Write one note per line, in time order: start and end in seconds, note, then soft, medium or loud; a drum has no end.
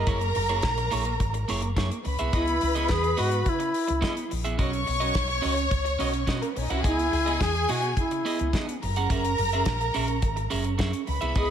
0.00 1.72 A#4 loud
0.00 1.72 A#5 loud
0.07 0.31 F#1 loud
0.07 0.28 A#3 medium
0.07 0.21 E4 medium
0.07 0.21 G#4 medium
0.07 0.20 C#5 medium
0.07 kick loud
0.07 closed hi-hat medium
0.21 muted clean electric guitar stroke soft
0.21 closed hi-hat soft
0.35 0.59 F#1 loud
0.35 muted clean electric guitar stroke soft
0.35 open hi-hat medium
0.49 0.62 A#3 medium
0.49 0.62 E4 medium
0.49 0.63 G#4 medium
0.49 0.63 C#5 medium
0.49 closed hi-hat soft
0.62 0.87 A#1 medium
0.62 kick loud
0.62 snare medium
0.62 closed hi-hat medium
0.77 muted clean electric guitar stroke soft
0.77 closed hi-hat soft
0.91 1.15 A#1 medium
0.91 1.13 A#3 medium
0.91 1.05 E4 medium
0.91 1.05 G#4 medium
0.91 1.04 C#5 medium
0.91 open hi-hat medium
1.05 muted clean electric guitar stroke soft
1.05 closed hi-hat soft
1.20 1.44 G#1 medium
1.20 muted clean electric guitar stroke soft
1.20 kick loud
1.20 closed hi-hat medium
1.34 muted clean electric guitar stroke soft
1.34 closed hi-hat soft
1.48 1.72 F#1 medium
1.48 1.70 A#3 medium
1.48 1.63 E4 loud
1.48 1.62 G#4 medium
1.48 1.62 C#5 loud
1.48 open hi-hat medium
1.62 muted clean electric guitar stroke medium
1.62 closed hi-hat medium
1.76 1.88 F#2 loud
1.76 1.98 A#3 medium
1.76 1.90 E4 medium
1.76 1.90 G#4 medium
1.76 1.90 C#5 medium
1.76 kick medium
1.76 snare medium
1.76 closed hi-hat medium
1.91 muted clean electric guitar stroke medium
1.91 closed hi-hat medium
2.04 2.17 C#2 loud
2.04 4.26 B4 loud
2.04 4.26 B5 loud
2.04 muted clean electric guitar stroke soft
2.04 open hi-hat medium
2.19 2.31 C2 medium
2.19 2.32 B3 medium
2.19 2.32 E4 medium
2.19 2.32 G#4 medium
2.19 2.34 E5 medium
2.19 closed hi-hat soft
2.33 2.57 C#2 medium
2.33 2.54 B3 medium
2.33 2.47 E4 medium
2.33 2.92 E4 medium
2.33 2.47 G#4 medium
2.33 2.46 D#5 medium
2.33 kick loud
2.33 closed hi-hat medium
2.47 muted clean electric guitar stroke soft
2.47 closed hi-hat soft
2.61 2.85 C#2 loud
2.61 muted clean electric guitar stroke soft
2.61 open hi-hat medium
2.75 2.88 B3 medium
2.75 2.89 E4 medium
2.75 2.89 G#4 medium
2.75 2.89 D#5 medium
2.75 closed hi-hat soft
2.88 3.13 E2 medium
2.88 3.20 G#4 loud
2.88 kick loud
2.88 snare loud
2.88 closed hi-hat medium
3.03 muted clean electric guitar stroke soft
3.03 closed hi-hat soft
3.17 3.41 G#2 medium
3.17 3.39 B3 medium
3.17 3.31 E4 medium
3.17 3.50 F#4 medium
3.17 3.31 G#4 medium
3.17 3.30 D#5 loud
3.17 open hi-hat medium
3.31 muted clean electric guitar stroke soft
3.31 closed hi-hat soft
3.45 3.69 C#3 medium
3.45 4.32 E4 medium
3.45 muted clean electric guitar stroke soft
3.45 kick loud
3.45 closed hi-hat medium
3.59 muted clean electric guitar stroke soft
3.59 closed hi-hat soft
3.74 open hi-hat medium
3.88 4.00 C#2 medium
3.88 muted clean electric guitar stroke soft
3.88 closed hi-hat soft
4.01 4.23 B3 medium
4.01 4.16 E4 medium
4.01 4.16 G#4 medium
4.01 4.15 D#5 loud
4.01 kick medium
4.01 snare loud
4.01 closed hi-hat medium
4.17 muted clean electric guitar stroke medium
4.17 closed hi-hat soft
4.30 4.55 A#1 medium
4.30 muted clean electric guitar stroke soft
4.30 open hi-hat medium
4.44 4.57 B3 medium
4.44 4.58 E4 medium
4.44 4.58 G#4 medium
4.44 4.59 E5 medium
4.44 closed hi-hat soft
4.58 4.82 B1 loud
4.58 4.80 C#4 medium
4.58 4.72 F#4 medium
4.58 4.72 A#4 medium
4.58 6.33 C#5 loud
4.58 4.71 D#5 medium
4.58 6.33 C#6 loud
4.58 kick loud
4.58 closed hi-hat medium
4.72 muted clean electric guitar stroke soft
4.72 closed hi-hat soft
4.86 5.11 B1 loud
4.86 muted clean electric guitar stroke soft
4.86 open hi-hat medium
5.00 5.13 C#4 medium
5.00 5.14 F#4 medium
5.00 5.14 A#4 medium
5.00 5.14 D#5 medium
5.00 closed hi-hat soft
5.14 5.39 B1 medium
5.14 muted clean electric guitar stroke soft
5.14 kick loud
5.14 snare medium
5.14 closed hi-hat medium
5.28 muted clean electric guitar stroke soft
5.28 closed hi-hat soft
5.42 5.67 C#2 medium
5.42 5.64 C#4 medium
5.42 5.56 F#4 medium
5.42 5.55 A#4 medium
5.42 5.55 D#5 medium
5.42 open hi-hat medium
5.56 muted clean electric guitar stroke soft
5.56 closed hi-hat soft
5.70 5.95 C#2 medium
5.70 muted clean electric guitar stroke soft
5.70 kick loud
5.70 closed hi-hat medium
5.85 muted clean electric guitar stroke soft
5.85 closed hi-hat soft
5.99 6.23 B1 medium
5.99 6.21 C#4 medium
5.99 6.13 F#4 medium
5.99 6.13 A#4 medium
5.99 6.13 D#5 medium
5.99 open hi-hat medium
6.14 muted clean electric guitar stroke soft
6.14 closed hi-hat medium
6.27 6.39 B2 loud
6.27 6.49 C#4 medium
6.27 6.42 F#4 loud
6.27 6.41 A#4 medium
6.27 6.41 D#5 medium
6.27 kick medium
6.27 snare medium
6.27 closed hi-hat medium
6.41 6.49 A#3 soft
6.41 6.49 A#4 medium
6.41 muted clean electric guitar stroke medium
6.41 closed hi-hat soft
6.48 6.56 B3 medium
6.48 6.56 B4 medium
6.56 6.68 B1 medium
6.56 6.63 C#4 medium
6.56 6.63 C#5 medium
6.56 muted clean electric guitar stroke soft
6.56 open hi-hat medium
6.63 6.70 D#4 medium
6.63 6.70 D#5 medium
6.69 6.82 C2 medium
6.69 6.83 C#4 soft
6.69 6.77 E4 medium
6.69 6.84 F#4 medium
6.69 6.84 A#4 medium
6.69 6.77 E5 medium
6.69 6.85 F#5 medium
6.69 closed hi-hat soft
6.77 6.84 F#4 medium
6.77 6.84 F#5 medium
6.83 7.08 C#2 loud
6.83 7.05 B3 medium
6.83 6.98 E4 medium
6.83 7.43 E4 loud
6.83 8.49 G#4 loud
6.83 6.98 G#4 medium
6.83 6.97 D#5 medium
6.83 8.49 G#5 loud
6.83 kick loud
6.83 closed hi-hat medium
6.98 muted clean electric guitar stroke soft
6.98 closed hi-hat soft
7.12 7.36 C#2 medium
7.12 muted clean electric guitar stroke soft
7.12 open hi-hat medium
7.26 7.40 B3 medium
7.26 7.40 E4 medium
7.26 7.40 G#4 medium
7.26 7.41 D#5 medium
7.26 closed hi-hat soft
7.41 7.64 E2 medium
7.41 7.71 G#4 medium
7.41 muted clean electric guitar stroke soft
7.41 kick loud
7.41 snare medium
7.41 closed hi-hat medium
7.55 muted clean electric guitar stroke soft
7.55 closed hi-hat soft
7.69 7.93 B2 medium
7.69 7.90 B3 medium
7.69 7.83 E4 medium
7.69 7.97 F#4 medium
7.69 7.82 G#4 medium
7.69 7.82 D#5 loud
7.69 open hi-hat medium
7.82 muted clean electric guitar stroke soft
7.82 closed hi-hat soft
7.97 8.21 C#3 medium
7.97 8.78 E4 medium
7.97 muted clean electric guitar stroke soft
7.97 kick medium
7.97 closed hi-hat medium
8.11 muted clean electric guitar stroke soft
8.11 closed hi-hat soft
8.25 8.47 B3 medium
8.25 8.40 E4 medium
8.25 8.39 G#4 medium
8.25 8.38 D#5 medium
8.25 open hi-hat medium
8.39 8.51 C#2 medium
8.39 muted clean electric guitar stroke soft
8.39 closed hi-hat soft
8.53 8.75 B3 medium
8.53 8.68 E4 medium
8.53 8.68 G#4 medium
8.53 8.67 D#5 medium
8.53 kick medium
8.53 snare loud
8.53 closed hi-hat medium
8.68 muted clean electric guitar stroke soft
8.68 closed hi-hat soft
8.82 9.06 F#1 loud
8.82 10.75 A#4 loud
8.82 10.76 A#5 loud
8.82 muted clean electric guitar stroke soft
8.82 open hi-hat medium
8.96 9.09 C#4 medium
8.96 9.09 G#4 medium
8.96 9.10 A#4 medium
8.96 9.11 F#5 medium
8.96 closed hi-hat soft
9.10 9.34 F#1 medium
9.10 9.32 C#4 medium
9.10 9.25 G#4 medium
9.10 9.24 A#4 medium
9.10 9.24 E5 medium
9.10 kick loud
9.10 closed hi-hat medium
9.24 muted clean electric guitar stroke soft
9.24 closed hi-hat medium
9.38 9.62 F#1 loud
9.38 muted clean electric guitar stroke soft
9.38 open hi-hat medium
9.52 9.66 C#4 medium
9.52 9.67 G#4 medium
9.52 9.67 A#4 medium
9.52 9.67 E5 medium
9.52 closed hi-hat soft
9.65 9.90 A#1 medium
9.65 kick loud
9.65 snare loud
9.65 closed hi-hat medium
9.81 muted clean electric guitar stroke soft
9.81 closed hi-hat soft
9.94 10.18 A#1 medium
9.94 10.16 C#4 medium
9.94 10.09 G#4 medium
9.94 10.08 A#4 loud
9.94 10.08 E5 medium
9.94 open hi-hat medium
10.08 muted clean electric guitar stroke soft
10.08 closed hi-hat soft
10.22 10.46 G#1 medium
10.22 muted clean electric guitar stroke soft
10.22 kick loud
10.22 closed hi-hat medium
10.36 muted clean electric guitar stroke soft
10.36 closed hi-hat soft
10.50 10.75 F#1 medium
10.50 10.72 C#4 medium
10.50 10.64 G#4 medium
10.50 10.64 A#4 loud
10.50 10.63 E5 medium
10.50 open hi-hat medium
10.64 muted clean electric guitar stroke soft
10.64 closed hi-hat medium
10.78 10.91 F#2 loud
10.78 11.00 C#4 medium
10.78 10.93 G#4 loud
10.78 10.93 A#4 medium
10.78 10.92 E5 loud
10.78 kick medium
10.78 snare loud
10.78 closed hi-hat medium
10.93 muted clean electric guitar stroke soft
10.93 closed hi-hat medium
11.07 11.19 C#2 loud
11.07 11.50 B4 medium
11.07 11.50 B5 loud
11.07 muted clean electric guitar stroke soft
11.07 open hi-hat medium
11.21 11.33 C2 medium
11.21 11.35 B3 soft
11.21 11.35 E4 medium
11.21 11.35 G#4 medium
11.21 11.37 E5 medium
11.21 closed hi-hat medium
11.35 11.50 C#2 medium
11.35 11.50 B3 medium
11.35 11.49 E4 medium
11.35 11.49 G#4 medium
11.35 11.50 G#4 medium
11.35 11.48 D#5 medium
11.35 kick loud
11.35 closed hi-hat medium